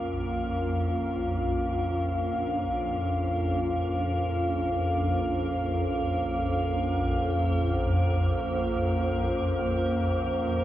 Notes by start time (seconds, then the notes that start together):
Already playing: A#1 F2 A#3 C#4 F4 A#4 F5
3.93 A#3 A#4
5.09 C5